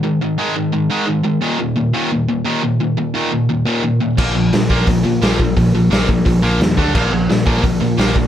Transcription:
<<
  \new Staff \with { instrumentName = "Distorted electric guitar" } { \clef bass \time 4/4 \key bes \mixolydian \tempo 4 = 174 <aes, ees>8 <aes, ees>8 <aes, ees aes>8 <aes, ees>8 <aes, ees>8 <aes, ees aes>8 <aes, ees>8 <aes, ees>8 | <ees, bes, ees>8 <ees, bes,>8 <ees, bes,>8 <ees, bes, ees>8 <ees, bes,>8 <ees, bes,>8 <ees, bes, ees>8 <ees, bes,>8 | <ees, bes,>8 <ees, bes,>8 <ees, bes, ees>8 <ees, bes,>8 <ees, bes,>8 <ees, bes, ees>8 <ees, bes,>8 <ees, bes,>8 | <bes, f bes>8 <bes, f>8 <bes, f>8 <bes, f bes>8 <bes, f>8 <bes, f>8 <bes, f bes>8 <bes, f>8 |
<bes, f>8 <bes, f>8 <bes, f bes>8 <bes, f>8 <bes, f>8 <bes, f bes>8 <bes, f>8 <d a d'>8 | <bes, f bes>8 <bes, f>8 <bes, f>8 <bes, f bes>8 <bes, f>8 <bes, f>8 <bes, f bes>8 <bes, f>8 | }
  \new Staff \with { instrumentName = "Picked electric bass" } { \clef bass \time 4/4 \key bes \mixolydian r1 | r1 | r1 | bes,,8 bes,,8 bes,,4 bes,,8 bes,8 bes,,8 bes,,8 |
bes,,8 bes,,8 bes,,8 bes,,8 bes,,8 bes,,8 ees,8 d,8 | bes,,8 bes,,8 bes,,4 bes,,8 bes,8 bes,,8 bes,,8 | }
  \new DrumStaff \with { instrumentName = "Drums" } \drummode { \time 4/4 r4 r4 r4 r4 | r4 r4 r4 r4 | r4 r4 r4 r4 | <cymc bd>4 <hho sn>8 bd8 <hho bd>4 <hho sn>8 bd8 |
<hho bd>4 <hho sn>8 bd8 <hho bd>4 <hho sn>8 bd8 | <cymc bd>4 <hho sn>8 bd8 <hho bd>4 <hho sn>8 bd8 | }
>>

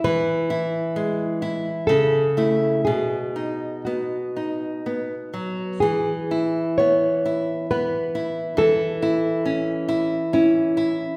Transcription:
<<
  \new Staff \with { instrumentName = "Nylon-string guitar" } { \time 3/4 \key e \major \tempo 4 = 65 b'2 a'4 | gis'4 fis'4. r8 | gis'4 cis''4 b'4 | a'2 e'4 | }
  \new Staff \with { instrumentName = "Nylon-string guitar" } { \time 3/4 \key e \major e8 e'8 gis8 e'8 cis8 <a e'>8 | b,8 dis'8 b8 dis'8 b8 fis8 | e8 e'8 b8 e'8 b8 e'8 | e8 e'8 cis'8 e'8 cis'8 e'8 | }
>>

